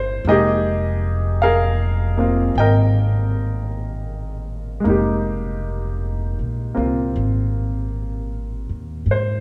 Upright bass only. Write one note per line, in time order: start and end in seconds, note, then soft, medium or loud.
0.00 0.22 G1 medium
0.25 2.51 F1 medium
2.55 4.81 G#1 medium
4.85 6.34 F1 medium
6.39 6.74 A#1 soft
6.77 7.12 C2 medium
7.16 8.65 G#1 medium
8.69 9.05 D#2 soft
9.06 9.40 G#2 soft